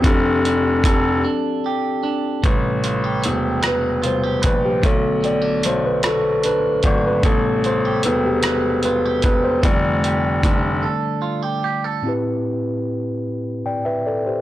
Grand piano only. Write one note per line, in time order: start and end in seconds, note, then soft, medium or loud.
0.05 0.81 F1 loud
0.85 1.20 F1 loud
2.45 3.24 A1 medium
3.25 4.45 E1 medium
4.45 4.81 A#1 medium
4.84 5.60 B1 medium
5.65 6.81 B1 medium
6.85 7.21 G#1 medium
7.24 8.00 A1 medium
8.06 9.21 E1 medium
9.25 9.61 E1 medium
9.64 10.40 F1 loud
10.44 10.82 F1 medium